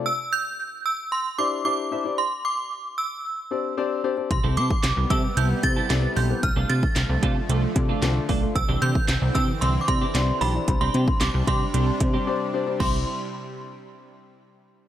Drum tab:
CC |----------------|----------------|----------------|----------------|
HH |----------------|----------------|x-x-x-x-x-x-x-o-|x-x-x-x-x-x-x-o-|
CP |----------------|----------------|----x-------x---|----x-------x---|
SD |----------------|----------------|----o-------o---|----o-------o---|
BD |----------------|----------------|o--o--o---o-----|o--o--o---o---o-|

CC |----------------|----------------|x---------------|
HH |x-x-x-x-x-x-x-o-|x-x-x-x-x-x-----|----------------|
CP |----x-------x---|----x-----------|----------------|
SD |----o-------o---|----o-----------|----------------|
BD |o--o--o---o-----|o--o--o---o-----|o---------------|